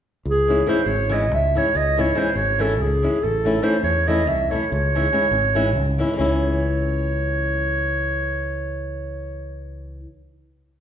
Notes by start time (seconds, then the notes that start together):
0.25 C#2
0.30 G#4
0.48 E3 G#3 C#4 E4
0.67 E3 G#3 C#4 E4 C5
0.86 G#1 C#5
1.10 E3 G#3 C#4 E4 D#5
1.31 C#2 E5
1.55 E3 G#3 C#4 E4 C#5
1.75 C#2 D#5
1.97 E3 G#3 C#4 E4 C#5
2.15 E3 G#3 C#4 E4 C5
2.35 G#1 C#5
2.59 E3 G#3 C#4 E4 A4
2.80 C#2 G#4
3.02 E3 G#3 C#4 E4
3.23 A1 A4
3.45 E3 A3 C#4 E4
3.62 E3 A3 C#4 E4 C5
3.83 E2 C#5
4.07 E3 A3 C#4 E4 D#5
4.28 C2 E5
4.51 E3 A3 C#4 E4 C#5
4.72 C#2 C#5
4.95 E3 G#3 C#4 E4
5.12 E3 G#3 C#4 E4
5.31 G#1
5.55 E3 G#3 C#4 E4
5.76 C#2
5.98 E3 G#3 C#4 E4
6.13 E3 G#3
6.18 C#2 C#4 E4 C#5